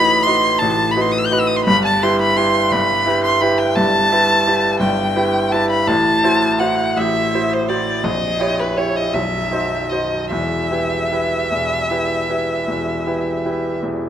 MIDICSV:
0, 0, Header, 1, 3, 480
1, 0, Start_track
1, 0, Key_signature, 1, "minor"
1, 0, Tempo, 700935
1, 1129, Time_signature, 12, 3, 24, 8
1, 3535, Tempo, 722022
1, 5935, Tempo, 747198
1, 6415, Tempo, 790514
1, 7855, Tempo, 771208
1, 9224, End_track
2, 0, Start_track
2, 0, Title_t, "Violin"
2, 0, Program_c, 0, 40
2, 0, Note_on_c, 0, 83, 101
2, 156, Note_on_c, 0, 84, 86
2, 166, Note_off_c, 0, 83, 0
2, 401, Note_on_c, 0, 81, 81
2, 412, Note_off_c, 0, 84, 0
2, 625, Note_on_c, 0, 83, 64
2, 635, Note_off_c, 0, 81, 0
2, 691, Note_on_c, 0, 84, 62
2, 701, Note_off_c, 0, 83, 0
2, 762, Note_on_c, 0, 87, 61
2, 772, Note_off_c, 0, 84, 0
2, 810, Note_on_c, 0, 88, 62
2, 820, Note_off_c, 0, 87, 0
2, 859, Note_on_c, 0, 91, 61
2, 869, Note_off_c, 0, 88, 0
2, 905, Note_on_c, 0, 90, 68
2, 915, Note_off_c, 0, 91, 0
2, 956, Note_on_c, 0, 88, 64
2, 967, Note_off_c, 0, 90, 0
2, 1007, Note_on_c, 0, 87, 65
2, 1017, Note_off_c, 0, 88, 0
2, 1067, Note_on_c, 0, 84, 63
2, 1078, Note_off_c, 0, 87, 0
2, 1123, Note_off_c, 0, 84, 0
2, 1127, Note_on_c, 0, 83, 100
2, 1248, Note_off_c, 0, 83, 0
2, 1267, Note_on_c, 0, 81, 76
2, 1389, Note_on_c, 0, 84, 77
2, 1399, Note_off_c, 0, 81, 0
2, 1502, Note_off_c, 0, 84, 0
2, 1517, Note_on_c, 0, 83, 84
2, 1623, Note_on_c, 0, 84, 82
2, 1633, Note_off_c, 0, 83, 0
2, 1863, Note_on_c, 0, 83, 85
2, 1873, Note_off_c, 0, 84, 0
2, 2216, Note_off_c, 0, 83, 0
2, 2219, Note_on_c, 0, 84, 78
2, 2335, Note_on_c, 0, 83, 74
2, 2345, Note_off_c, 0, 84, 0
2, 2451, Note_on_c, 0, 79, 75
2, 2461, Note_off_c, 0, 83, 0
2, 2575, Note_on_c, 0, 81, 96
2, 2585, Note_off_c, 0, 79, 0
2, 3287, Note_off_c, 0, 81, 0
2, 3291, Note_on_c, 0, 79, 73
2, 3771, Note_on_c, 0, 81, 73
2, 3781, Note_off_c, 0, 79, 0
2, 3890, Note_off_c, 0, 81, 0
2, 3894, Note_on_c, 0, 83, 75
2, 4007, Note_on_c, 0, 81, 91
2, 4017, Note_off_c, 0, 83, 0
2, 4486, Note_on_c, 0, 78, 74
2, 4496, Note_off_c, 0, 81, 0
2, 4735, Note_on_c, 0, 76, 76
2, 4745, Note_off_c, 0, 78, 0
2, 5109, Note_on_c, 0, 72, 65
2, 5119, Note_off_c, 0, 76, 0
2, 5215, Note_on_c, 0, 74, 62
2, 5225, Note_off_c, 0, 72, 0
2, 5446, Note_on_c, 0, 75, 74
2, 5456, Note_off_c, 0, 74, 0
2, 5817, Note_on_c, 0, 71, 61
2, 5827, Note_off_c, 0, 75, 0
2, 5934, Note_on_c, 0, 73, 62
2, 5943, Note_off_c, 0, 71, 0
2, 6055, Note_on_c, 0, 75, 64
2, 6065, Note_off_c, 0, 73, 0
2, 6170, Note_on_c, 0, 76, 64
2, 6180, Note_off_c, 0, 75, 0
2, 6641, Note_on_c, 0, 75, 51
2, 6650, Note_off_c, 0, 76, 0
2, 6887, Note_off_c, 0, 75, 0
2, 6892, Note_on_c, 0, 76, 71
2, 9029, Note_off_c, 0, 76, 0
2, 9224, End_track
3, 0, Start_track
3, 0, Title_t, "Grand piano"
3, 0, Program_c, 1, 0
3, 0, Control_c, 1, 64, 127
3, 0, Note_on_c, 1, 33, 55
3, 0, Note_on_c, 1, 45, 55
3, 0, Note_on_c, 1, 63, 48
3, 0, Note_on_c, 1, 66, 44
3, 0, Note_on_c, 1, 71, 50
3, 154, Note_off_c, 1, 63, 0
3, 156, Note_off_c, 1, 66, 0
3, 160, Note_off_c, 1, 71, 0
3, 180, Note_on_c, 1, 63, 43
3, 186, Note_on_c, 1, 66, 44
3, 187, Note_on_c, 1, 71, 50
3, 390, Note_off_c, 1, 63, 0
3, 393, Note_off_c, 1, 66, 0
3, 394, Note_off_c, 1, 71, 0
3, 422, Note_off_c, 1, 45, 0
3, 422, Note_on_c, 1, 45, 54
3, 424, Note_off_c, 1, 33, 0
3, 424, Note_on_c, 1, 33, 52
3, 646, Note_off_c, 1, 45, 0
3, 647, Note_off_c, 1, 33, 0
3, 659, Note_on_c, 1, 63, 43
3, 662, Note_on_c, 1, 66, 45
3, 664, Note_on_c, 1, 71, 51
3, 868, Note_off_c, 1, 63, 0
3, 870, Note_off_c, 1, 66, 0
3, 871, Note_off_c, 1, 71, 0
3, 898, Note_on_c, 1, 66, 46
3, 899, Note_on_c, 1, 63, 50
3, 904, Note_on_c, 1, 71, 58
3, 1111, Note_off_c, 1, 66, 0
3, 1112, Note_off_c, 1, 63, 0
3, 1114, Note_off_c, 1, 71, 0
3, 1139, Control_c, 1, 64, 0
3, 1143, Note_on_c, 1, 31, 56
3, 1143, Note_on_c, 1, 43, 64
3, 1240, Control_c, 1, 64, 127
3, 1373, Note_off_c, 1, 31, 0
3, 1373, Note_off_c, 1, 43, 0
3, 1390, Note_on_c, 1, 64, 50
3, 1391, Note_on_c, 1, 67, 47
3, 1391, Note_on_c, 1, 71, 49
3, 1601, Note_off_c, 1, 64, 0
3, 1601, Note_off_c, 1, 67, 0
3, 1601, Note_off_c, 1, 71, 0
3, 1621, Note_on_c, 1, 64, 47
3, 1621, Note_on_c, 1, 67, 45
3, 1621, Note_on_c, 1, 71, 48
3, 1834, Note_off_c, 1, 64, 0
3, 1834, Note_off_c, 1, 67, 0
3, 1834, Note_off_c, 1, 71, 0
3, 1860, Note_on_c, 1, 31, 56
3, 1864, Note_on_c, 1, 43, 54
3, 2088, Note_off_c, 1, 31, 0
3, 2090, Note_off_c, 1, 43, 0
3, 2096, Note_on_c, 1, 64, 44
3, 2103, Note_on_c, 1, 67, 39
3, 2104, Note_on_c, 1, 71, 48
3, 2311, Note_off_c, 1, 64, 0
3, 2314, Note_off_c, 1, 67, 0
3, 2315, Note_off_c, 1, 71, 0
3, 2340, Note_on_c, 1, 64, 48
3, 2341, Note_on_c, 1, 71, 49
3, 2342, Note_on_c, 1, 67, 46
3, 2554, Note_off_c, 1, 64, 0
3, 2555, Note_off_c, 1, 67, 0
3, 2555, Note_off_c, 1, 71, 0
3, 2579, Note_on_c, 1, 31, 48
3, 2579, Note_on_c, 1, 43, 54
3, 2809, Note_off_c, 1, 31, 0
3, 2809, Note_off_c, 1, 43, 0
3, 2822, Note_on_c, 1, 64, 44
3, 2825, Note_on_c, 1, 71, 47
3, 2826, Note_on_c, 1, 67, 41
3, 3033, Note_off_c, 1, 64, 0
3, 3035, Note_off_c, 1, 67, 0
3, 3035, Note_off_c, 1, 71, 0
3, 3063, Note_on_c, 1, 64, 41
3, 3065, Note_on_c, 1, 67, 39
3, 3068, Note_on_c, 1, 71, 46
3, 3274, Note_off_c, 1, 64, 0
3, 3275, Note_off_c, 1, 67, 0
3, 3277, Note_off_c, 1, 71, 0
3, 3284, Note_on_c, 1, 43, 49
3, 3288, Note_on_c, 1, 31, 49
3, 3523, Note_off_c, 1, 43, 0
3, 3525, Note_off_c, 1, 31, 0
3, 3532, Note_on_c, 1, 64, 41
3, 3533, Note_on_c, 1, 67, 41
3, 3535, Note_on_c, 1, 71, 50
3, 3746, Note_off_c, 1, 64, 0
3, 3747, Note_off_c, 1, 67, 0
3, 3748, Note_off_c, 1, 71, 0
3, 3775, Note_on_c, 1, 64, 44
3, 3775, Note_on_c, 1, 67, 46
3, 3783, Note_on_c, 1, 71, 52
3, 3986, Note_off_c, 1, 64, 0
3, 3986, Note_off_c, 1, 67, 0
3, 3991, Note_off_c, 1, 71, 0
3, 4007, Note_on_c, 1, 45, 53
3, 4012, Note_on_c, 1, 33, 62
3, 4018, Control_c, 1, 64, 0
3, 4138, Control_c, 1, 64, 127
3, 4237, Note_off_c, 1, 45, 0
3, 4239, Note_off_c, 1, 33, 0
3, 4248, Note_on_c, 1, 64, 45
3, 4253, Note_on_c, 1, 66, 42
3, 4255, Note_on_c, 1, 72, 49
3, 4462, Note_off_c, 1, 64, 0
3, 4465, Note_off_c, 1, 66, 0
3, 4466, Note_off_c, 1, 72, 0
3, 4493, Note_on_c, 1, 64, 35
3, 4494, Note_on_c, 1, 72, 39
3, 4496, Note_on_c, 1, 66, 42
3, 4708, Note_off_c, 1, 64, 0
3, 4708, Note_off_c, 1, 72, 0
3, 4710, Note_off_c, 1, 66, 0
3, 4733, Note_on_c, 1, 45, 44
3, 4734, Note_on_c, 1, 33, 48
3, 4965, Note_off_c, 1, 33, 0
3, 4965, Note_off_c, 1, 45, 0
3, 4982, Note_on_c, 1, 64, 34
3, 4985, Note_on_c, 1, 66, 36
3, 4988, Note_on_c, 1, 72, 41
3, 5192, Note_off_c, 1, 64, 0
3, 5193, Note_off_c, 1, 66, 0
3, 5195, Note_off_c, 1, 72, 0
3, 5213, Note_on_c, 1, 64, 37
3, 5219, Note_on_c, 1, 72, 40
3, 5220, Note_on_c, 1, 66, 39
3, 5426, Note_off_c, 1, 64, 0
3, 5430, Note_off_c, 1, 66, 0
3, 5430, Note_off_c, 1, 72, 0
3, 5445, Note_on_c, 1, 22, 42
3, 5448, Note_on_c, 1, 34, 50
3, 5460, Control_c, 1, 64, 0
3, 5575, Control_c, 1, 64, 127
3, 5680, Note_off_c, 1, 22, 0
3, 5682, Note_off_c, 1, 34, 0
3, 5684, Note_on_c, 1, 64, 37
3, 5688, Note_on_c, 1, 67, 37
3, 5693, Note_on_c, 1, 73, 41
3, 5906, Note_off_c, 1, 64, 0
3, 5908, Note_off_c, 1, 67, 0
3, 5911, Note_off_c, 1, 73, 0
3, 5935, Note_on_c, 1, 64, 35
3, 5939, Note_on_c, 1, 73, 36
3, 5942, Note_on_c, 1, 67, 36
3, 6148, Note_off_c, 1, 64, 0
3, 6151, Note_off_c, 1, 73, 0
3, 6152, Note_off_c, 1, 67, 0
3, 6169, Note_on_c, 1, 35, 44
3, 6173, Note_on_c, 1, 23, 39
3, 6182, Control_c, 1, 64, 0
3, 6304, Control_c, 1, 64, 127
3, 6404, Note_off_c, 1, 35, 0
3, 6406, Note_off_c, 1, 23, 0
3, 6411, Note_on_c, 1, 63, 32
3, 6417, Note_on_c, 1, 66, 31
3, 6418, Note_on_c, 1, 72, 36
3, 6623, Note_off_c, 1, 63, 0
3, 6627, Note_off_c, 1, 66, 0
3, 6627, Note_off_c, 1, 72, 0
3, 6654, Note_on_c, 1, 66, 35
3, 6655, Note_on_c, 1, 63, 38
3, 6660, Note_on_c, 1, 72, 38
3, 6869, Note_off_c, 1, 66, 0
3, 6870, Note_off_c, 1, 63, 0
3, 6873, Note_off_c, 1, 72, 0
3, 6893, Note_on_c, 1, 40, 49
3, 6896, Note_on_c, 1, 28, 43
3, 6903, Control_c, 1, 64, 0
3, 7008, Control_c, 1, 64, 127
3, 7128, Note_off_c, 1, 40, 0
3, 7129, Note_off_c, 1, 28, 0
3, 7138, Note_on_c, 1, 64, 32
3, 7139, Note_on_c, 1, 67, 30
3, 7141, Note_on_c, 1, 71, 35
3, 7352, Note_off_c, 1, 64, 0
3, 7352, Note_off_c, 1, 67, 0
3, 7354, Note_off_c, 1, 71, 0
3, 7384, Note_on_c, 1, 64, 31
3, 7388, Note_on_c, 1, 67, 28
3, 7391, Note_on_c, 1, 71, 35
3, 7595, Note_off_c, 1, 64, 0
3, 7597, Note_off_c, 1, 67, 0
3, 7599, Note_off_c, 1, 71, 0
3, 7624, Note_on_c, 1, 28, 37
3, 7625, Note_on_c, 1, 40, 33
3, 7852, Note_off_c, 1, 28, 0
3, 7852, Note_off_c, 1, 40, 0
3, 7863, Note_on_c, 1, 64, 29
3, 7867, Note_on_c, 1, 67, 28
3, 7869, Note_on_c, 1, 71, 33
3, 8079, Note_off_c, 1, 64, 0
3, 8081, Note_off_c, 1, 67, 0
3, 8082, Note_off_c, 1, 71, 0
3, 8106, Note_on_c, 1, 64, 30
3, 8108, Note_on_c, 1, 67, 28
3, 8109, Note_on_c, 1, 71, 32
3, 8319, Note_off_c, 1, 64, 0
3, 8320, Note_off_c, 1, 67, 0
3, 8321, Note_off_c, 1, 71, 0
3, 8343, Note_on_c, 1, 28, 35
3, 8344, Note_on_c, 1, 40, 32
3, 8572, Note_off_c, 1, 28, 0
3, 8573, Note_off_c, 1, 40, 0
3, 8586, Note_on_c, 1, 64, 29
3, 8588, Note_on_c, 1, 67, 28
3, 8596, Note_on_c, 1, 71, 30
3, 8796, Note_off_c, 1, 64, 0
3, 8797, Note_off_c, 1, 67, 0
3, 8801, Note_off_c, 1, 71, 0
3, 8826, Note_on_c, 1, 64, 26
3, 8826, Note_on_c, 1, 67, 29
3, 8831, Note_on_c, 1, 71, 31
3, 9035, Note_off_c, 1, 64, 0
3, 9036, Note_off_c, 1, 67, 0
3, 9038, Note_off_c, 1, 71, 0
3, 9058, Note_on_c, 1, 40, 33
3, 9059, Note_on_c, 1, 28, 33
3, 9224, Note_off_c, 1, 28, 0
3, 9224, Note_off_c, 1, 40, 0
3, 9224, End_track
0, 0, End_of_file